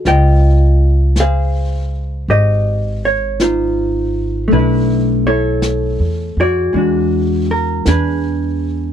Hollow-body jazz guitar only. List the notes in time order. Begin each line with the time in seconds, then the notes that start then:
0.07 F4 C5 D#5 G5
1.20 G#4 C5 F5
2.30 G4 C5 D#5
3.05 C#5
3.41 D#4 F4 C5
4.48 A3
4.52 D4 E4 B4
4.59 E4
5.27 E4 A4 C#5
6.40 F#4 G#4 D5
6.73 E3 G#3 D4
6.78 F#4
7.51 A#4
7.88 D4 G#4 B4